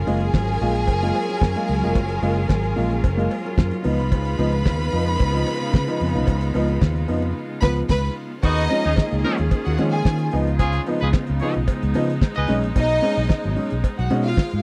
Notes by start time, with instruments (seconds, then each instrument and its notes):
Already playing: string section F#3 C#4 F4 G#4 A#4, violin section G#4 G#5
0.07 fingered electric bass F#1, grand piano G#3 A#3 F4, open hi-hat, cowbell
0.21 grand piano A#3 F4, closed hi-hat
0.34 fingered electric bass G#1, grand piano F#3, kick, snare, cowbell
0.47 closed hi-hat
0.60 fingered electric bass A#1, grand piano G#3 A#3 F4, open hi-hat
0.75 grand piano A#3 F4, closed hi-hat
0.87 fingered electric bass F#1, kick, closed hi-hat, cowbell
1.02 grand piano G#3 A#3 F4, closed hi-hat
1.15 open hi-hat, cowbell
1.29 grand piano F#3, closed hi-hat
1.41 fingered electric bass F#2, kick, snare, cowbell
1.55 grand piano G#3 A#3 F4, closed hi-hat
1.68 fingered electric bass C#2, grand piano F#3, open hi-hat
1.83 fingered electric bass F1, grand piano G#3 A#3 F4, closed hi-hat
1.95 fingered electric bass F#1, grand piano F#3, kick, closed hi-hat, cowbell
2.09 closed hi-hat
2.22 fingered electric bass F#1, grand piano G#3 A#3 F4, open hi-hat, cowbell
2.36 grand piano A#3 F4, closed hi-hat
2.49 fingered electric bass G#1, grand piano F#3, kick, snare, cowbell
2.64 closed hi-hat
2.76 fingered electric bass A#1, grand piano G#3 A#3 F4, open hi-hat
2.91 grand piano A#3 F4, closed hi-hat
3.04 fingered electric bass F#1, kick, closed hi-hat, cowbell
3.17 grand piano G#3 A#3 F4, closed hi-hat
3.31 open hi-hat, cowbell
3.45 grand piano F#3, closed hi-hat
3.57 fingered electric bass F#2, grand piano A#3 F4, kick, snare, cowbell
3.71 grand piano F#3, closed hi-hat
3.84 fingered electric bass C#2, string section C#3 G#3 B3 D#4, grand piano F3 B3 D#4, violin section B4 B5, open hi-hat
3.99 fingered electric bass C2, closed hi-hat
4.12 fingered electric bass C#2, grand piano C#3, kick, closed hi-hat, cowbell
4.25 closed hi-hat
4.39 fingered electric bass C#2, grand piano F3 B3 D#4, open hi-hat, cowbell
4.52 grand piano B3 D#4, closed hi-hat
4.66 grand piano C#3, kick, snare, cowbell
4.80 closed hi-hat
4.92 fingered electric bass F2, grand piano F3 B3 D#4, open hi-hat
5.07 grand piano B3 D#4, closed hi-hat
5.19 fingered electric bass C#2, kick, closed hi-hat, cowbell
5.33 grand piano F3 B3 D#4, closed hi-hat
5.47 open hi-hat, cowbell
5.61 grand piano C#3, closed hi-hat
5.73 fingered electric bass C#3, kick, snare, cowbell
5.87 grand piano F3 B3 D#4, closed hi-hat
6.00 fingered electric bass F2, grand piano C#3, open hi-hat
6.15 fingered electric bass C2, grand piano F3 B3 D#4, closed hi-hat
6.27 fingered electric bass C#2, grand piano C#3, kick, closed hi-hat, cowbell
6.41 closed hi-hat
6.54 fingered electric bass C#2, grand piano F3 B3 D#4, open hi-hat, cowbell
6.68 grand piano B3 D#4, closed hi-hat
6.81 fingered electric bass D#2, grand piano C#3, kick, snare, cowbell
6.96 closed hi-hat
7.08 fingered electric bass F2, grand piano F3 B3 D#4, open hi-hat
7.22 grand piano B3 D#4, closed hi-hat
7.62 fingered electric bass C#2, grand piano F3 B3, violin section B4 B5, kick, snare, crash
7.88 fingered electric bass C#2, violin section B4 B5, kick, snare, crash
8.42 fingered electric bass D#2, string section D#3 A#3 C#4 F4 G#4, grand piano D#3, horn section B3 D#4 F#4, violin section D#4 D#5, kick, crash, cowbell
8.56 closed hi-hat
8.70 grand piano F3 G#3 C#4, open hi-hat, cowbell
8.84 fingered electric bass D#2, grand piano G#3 C#4, horn section C#4 D#4 G#4, closed hi-hat
8.96 grand piano G#3 C#4, kick, snare, cowbell
9.11 fingered electric bass C#2, grand piano D#3, closed hi-hat
9.24 grand piano F3 G#3 C#4, horn section C#4 D#4 A#4, open hi-hat
9.38 fingered electric bass D#2, closed hi-hat
9.51 kick, closed hi-hat, cowbell
9.65 fingered electric bass D#2, violin section F#4 F#5, closed hi-hat
9.78 fingered electric bass D#3, grand piano F3 G#3 C#4, open hi-hat, cowbell
9.92 violin section G#4 G#5, closed hi-hat
10.05 fingered electric bass D#3, kick, snare, cowbell
10.19 closed hi-hat
10.31 fingered electric bass C#2, string section C#3 G#3 B3 D#4, grand piano F3 B3 D#4, open hi-hat
10.47 closed hi-hat
10.59 grand piano C#3, horn section C#4 F4 G#4, kick, closed hi-hat, cowbell
10.72 closed hi-hat
10.86 grand piano F3 B3 D#4, open hi-hat, cowbell
11.00 fingered electric bass C#2, grand piano B3 D#4, horn section F4 G#4 B4, closed hi-hat
11.13 grand piano B3 D#4, kick, snare, cowbell
11.27 fingered electric bass C#2, grand piano C#3, closed hi-hat
11.40 grand piano F3 B3 D#4, horn section F4 G#4 C#5, open hi-hat
11.54 fingered electric bass B1, closed hi-hat
11.68 kick, closed hi-hat, cowbell
11.82 fingered electric bass C#2, closed hi-hat
11.94 fingered electric bass C#3, grand piano F3 B3 D#4, open hi-hat, cowbell
12.10 closed hi-hat
12.21 kick, snare, cowbell
12.35 fingered electric bass C#2, horn section G#4 B4 D#5, closed hi-hat
12.47 fingered electric bass B1, grand piano G#3 C#4 D#4, open hi-hat
12.64 fingered electric bass A#1, closed hi-hat
12.76 fingered electric bass B1, grand piano B2 F#3, violin section D#4 D#5, kick, closed hi-hat, cowbell
12.89 closed hi-hat
13.02 grand piano G#3 C#4 D#4, open hi-hat, cowbell
13.17 fingered electric bass B1, grand piano C#4 D#4, closed hi-hat
13.29 grand piano C#4 D#4, kick, snare, cowbell
13.44 fingered electric bass G#1, grand piano B2 F#3, closed hi-hat
13.56 grand piano G#3 C#4 D#4, open hi-hat
13.70 fingered electric bass B1, closed hi-hat
13.84 kick, closed hi-hat, cowbell
13.97 fingered electric bass B1, violin section F#4 F#5, closed hi-hat
14.10 fingered electric bass B2, grand piano G#3 C#4 D#4, open hi-hat, cowbell
14.24 violin section F4 F5, closed hi-hat
14.37 kick, snare, cowbell
14.51 fingered electric bass G#2, closed hi-hat